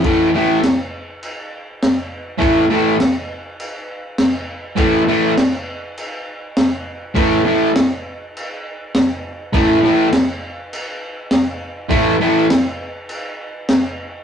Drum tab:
CC |x-x-x-x-|x-x-x-x-|x-x-x-x-|x-x-x-x-|
SD |--o---o-|--o---o-|--o---o-|--o---o-|
BD |o-------|o-------|o-------|o-------|

CC |x-x-x-x-|x-x-x-x-|
SD |--o---o-|--o---o-|
BD |o-------|o-------|